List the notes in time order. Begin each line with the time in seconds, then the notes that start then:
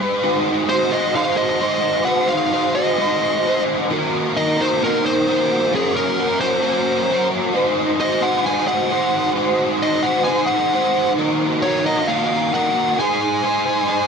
Already playing: G#3
0.01 D#4 G#4 C5
0.23 G#3 D#4 F#4 C5
0.68 G#3 D#4 F#4 C5
0.91 D#4 F#4 C5 D#5
1.14 G#3 D#4 F#4 C5 F5
1.37 D#5
1.61 G#3 D#4 F#4 C5
2.05 G#3 D#4 F#4 C5 F#5
2.29 F5
2.52 G#3 D#4 F#4 C5
2.75 D#4 F#4 C5 D#5
2.98 G#3 D#4 F#4 C5
3.45 G#3 D#4 F#4 C5
3.90 D#3 A#3 D#4 F#4 A#4
4.35 A#3 D#4 F#4 A#4 D#5
4.58 D#4 F#4 A#4 C5
4.81 D#3 A#3 D#4 F#4 A#4
5.06 C5
5.27 A#3 D#4 F#4 A#4
5.73 F#3 A#3 C#4 F#4 G#4 A#4
5.96 A#4
6.18 A#3 C#4 F#4 A#4
6.41 C#4 F#4 A#4 C5
6.61 F#3 A#3 C#4 F#4 A#4
7.08 A#3 C#4 F#4 A#4
7.53 G#3 D#4 F#4 C5
8.00 G#3 D#4 F#4 C5 D#5
8.22 D#4 F#4 C5 F#5
8.45 G#3 D#4 F#4 C5 G#5
8.68 F#5
8.90 G#3 D#4 F#4 C5
9.35 G#3 D#4 F#4 C5
9.82 G#3 D#4 F#4 C5 D#5
10.03 F#4 C5 F#5
10.07 D#4
10.24 G#3 D#4 F#4 G#5
10.29 C5
10.46 F#5
10.72 G#3 D#4 F#4 C5
11.17 D#3 A#3 D#4 F#4 A#4
11.62 A#3 D#4 F#4 A#4 C#5
11.86 D#4 F#4 A#4 D#5
12.07 D#3 A#3 D#4 F#4 A#4 F5
12.53 A#3 D#4 F#4 A#4 F#5
12.99 G#3 D#4 G#4 C5 G#5
13.43 G#3 D#4 G#4 C5
13.65 D#4 G#4 C5
13.87 G#3 D#4 G#4 C5